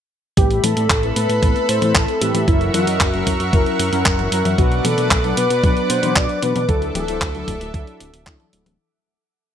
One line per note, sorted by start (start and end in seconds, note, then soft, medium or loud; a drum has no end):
0.37 0.60 A1 loud
0.37 0.74 A3 medium
0.37 0.74 C4 medium
0.37 0.74 E4 medium
0.37 0.65 G4 loud
0.37 2.46 A4 medium
0.37 0.74 B4 medium
0.37 4.54 E5 medium
0.37 2.46 B5 medium
0.37 kick loud
0.37 closed hi-hat medium
0.51 closed hi-hat soft
0.64 0.75 A2 medium
0.64 1.16 A4 loud
0.64 closed hi-hat medium
0.64 high tom medium
0.77 0.88 A2 medium
0.77 0.96 A3 medium
0.77 0.96 C4 medium
0.77 0.96 E4 medium
0.77 0.96 D5 medium
0.77 closed hi-hat medium
0.90 1.13 A1 medium
0.90 kick loud
0.90 clap loud
0.90 closed hi-hat medium
1.03 1.22 A3 medium
1.03 1.22 C4 medium
1.03 1.22 E4 medium
1.03 1.22 B4 loud
1.03 closed hi-hat soft
1.16 1.28 A2 medium
1.16 1.70 B4 loud
1.16 closed hi-hat medium
1.29 1.41 A2 medium
1.29 closed hi-hat medium
1.42 1.54 A1 loud
1.42 1.79 A3 medium
1.42 1.79 C4 medium
1.42 1.79 E4 medium
1.42 1.79 B4 loud
1.42 kick loud
1.42 closed hi-hat medium
1.56 closed hi-hat soft
1.69 1.80 A2 medium
1.69 1.97 C5 loud
1.69 closed hi-hat loud
1.82 1.93 A2 medium
1.82 2.18 A3 medium
1.82 2.18 C4 medium
1.82 2.18 E4 medium
1.82 2.18 B4 loud
1.82 closed hi-hat soft
1.82 high tom medium
1.95 2.06 A1 medium
1.95 2.23 A4 loud
1.95 kick loud
1.95 clap loud
1.95 closed hi-hat medium
2.08 closed hi-hat soft
2.21 2.33 A2 medium
2.21 2.45 A3 loud
2.21 2.45 C4 medium
2.21 2.45 E4 medium
2.21 2.47 G4 loud
2.21 2.45 B4 loud
2.21 closed hi-hat medium
2.21 high tom medium
2.35 2.46 A2 medium
2.35 closed hi-hat medium
2.35 high tom medium
2.48 2.70 F#1 loud
2.48 2.84 F#3 medium
2.48 2.84 C#4 medium
2.48 2.84 E4 medium
2.48 2.72 E4 loud
2.48 2.84 A#4 medium
2.48 4.56 A#4 medium
2.48 8.75 F#5 medium
2.48 4.56 C#6 medium
2.48 kick loud
2.48 closed hi-hat medium
2.61 closed hi-hat soft
2.74 2.85 F#2 medium
2.74 3.49 F#4 medium
2.74 closed hi-hat medium
2.74 high tom medium
2.87 2.99 F#2 medium
2.87 3.07 F#3 medium
2.87 3.07 C#4 medium
2.87 3.07 E4 medium
2.87 3.07 D#5 medium
2.87 closed hi-hat medium
3.00 3.23 F#1 medium
3.00 kick loud
3.00 clap loud
3.00 closed hi-hat medium
3.14 3.33 F#3 medium
3.14 3.33 C#4 medium
3.14 3.33 E4 medium
3.14 3.33 A#4 loud
3.14 closed hi-hat soft
3.27 3.38 F#2 medium
3.27 kick medium
3.27 closed hi-hat medium
3.40 3.51 F#2 loud
3.40 closed hi-hat medium
3.53 3.64 F#1 medium
3.53 3.89 F#3 medium
3.53 3.89 C#4 medium
3.53 3.89 E4 medium
3.53 3.89 A#4 medium
3.53 kick loud
3.53 closed hi-hat medium
3.66 closed hi-hat soft
3.79 3.91 F#2 medium
3.79 closed hi-hat medium
3.92 4.04 F#2 medium
3.92 4.29 F#3 loud
3.92 4.29 C#4 medium
3.92 4.29 E4 medium
3.92 4.29 A#4 loud
3.92 closed hi-hat medium
4.06 4.28 F#1 medium
4.06 kick loud
4.06 clap loud
4.06 closed hi-hat medium
4.19 closed hi-hat soft
4.19 high tom medium
4.32 4.43 F#2 medium
4.32 4.55 F#3 medium
4.32 4.55 C#4 medium
4.32 4.55 E4 medium
4.32 4.55 A#4 loud
4.32 closed hi-hat medium
4.45 4.57 F#2 medium
4.45 closed hi-hat medium
4.45 high tom medium
4.58 4.81 B1 loud
4.58 4.95 F#3 medium
4.58 4.95 B3 medium
4.58 4.95 D4 medium
4.58 4.86 F#4 medium
4.58 4.95 B4 medium
4.58 6.67 B4 medium
4.58 6.67 D5 medium
4.58 8.75 D6 medium
4.58 kick loud
4.58 closed hi-hat soft
4.72 closed hi-hat soft
4.85 4.96 B2 medium
4.85 5.39 A4 loud
4.85 closed hi-hat medium
4.85 high tom medium
4.98 5.09 B2 medium
4.98 5.17 F#3 medium
4.98 5.17 B3 medium
4.98 5.17 D4 medium
4.98 5.17 E5 medium
4.98 closed hi-hat soft
5.11 5.34 B1 medium
5.11 kick loud
5.11 clap loud
5.11 closed hi-hat soft
5.24 5.43 F#3 medium
5.24 5.43 B3 medium
5.24 5.43 D4 medium
5.24 5.43 B4 loud
5.24 closed hi-hat soft
5.37 5.49 B2 medium
5.37 5.91 B4 loud
5.37 closed hi-hat medium
5.50 5.62 B2 loud
5.50 closed hi-hat medium
5.64 5.75 B1 loud
5.64 6.00 F#3 medium
5.64 6.00 B3 medium
5.64 6.00 D4 medium
5.64 6.00 B4 loud
5.64 kick loud
5.64 closed hi-hat soft
5.77 closed hi-hat soft
5.90 6.01 B2 medium
5.90 6.18 C5 loud
5.90 closed hi-hat medium
6.03 6.14 B2 medium
6.03 6.39 F#3 medium
6.03 6.39 B3 medium
6.03 6.39 D4 medium
6.03 6.39 B4 loud
6.03 closed hi-hat soft
6.03 high tom medium
6.16 6.28 B1 medium
6.16 6.44 D5 loud
6.16 kick loud
6.16 clap loud
6.16 closed hi-hat medium
6.29 closed hi-hat soft
6.43 6.54 B2 medium
6.43 6.66 F#3 loud
6.43 6.66 B3 medium
6.43 6.66 D4 medium
6.43 6.66 B4 loud
6.43 6.68 B4 loud
6.43 closed hi-hat medium
6.43 high tom medium
6.56 6.67 B2 medium
6.56 closed hi-hat medium
6.56 high tom medium
6.69 6.91 D2 loud
6.69 7.05 F#3 medium
6.69 7.05 D4 medium
6.69 7.05 E4 medium
6.69 7.05 A4 medium
6.69 8.77 A4 medium
6.69 6.93 A4 loud
6.69 8.77 E5 medium
6.69 kick loud
6.69 closed hi-hat soft
6.82 closed hi-hat soft
6.95 7.06 D1 medium
6.95 7.70 A4 medium
6.95 closed hi-hat medium
6.95 high tom medium
7.08 7.20 D1 medium
7.08 7.28 F#3 medium
7.08 7.28 D4 medium
7.08 7.28 E4 medium
7.08 7.28 C5 medium
7.08 closed hi-hat soft
7.21 7.44 D2 medium
7.21 kick loud
7.21 clap loud
7.21 closed hi-hat soft
7.35 7.54 F#3 medium
7.35 7.54 D4 medium
7.35 7.54 E4 medium
7.35 7.54 A4 loud
7.35 closed hi-hat soft
7.48 7.59 D1 medium
7.48 kick medium
7.48 closed hi-hat medium
7.61 7.72 D1 loud
7.61 closed hi-hat soft
7.74 7.85 D2 medium
7.74 8.10 F#3 medium
7.74 8.10 D4 medium
7.74 8.10 E4 medium
7.74 8.10 A4 loud
7.74 kick loud
7.74 closed hi-hat soft
7.87 closed hi-hat soft
8.00 8.12 D1 medium
8.00 closed hi-hat medium
8.14 8.25 D1 medium
8.14 closed hi-hat soft
8.27 8.38 D2 medium
8.27 8.76 F#3 medium
8.27 8.76 D4 medium
8.27 8.76 E4 medium
8.27 8.76 A4 medium
8.27 kick loud
8.27 clap loud
8.27 closed hi-hat soft
8.40 closed hi-hat soft
8.40 high tom medium
8.53 8.64 D1 medium
8.53 closed hi-hat medium
8.66 8.78 D1 medium
8.66 closed hi-hat soft
8.66 high tom medium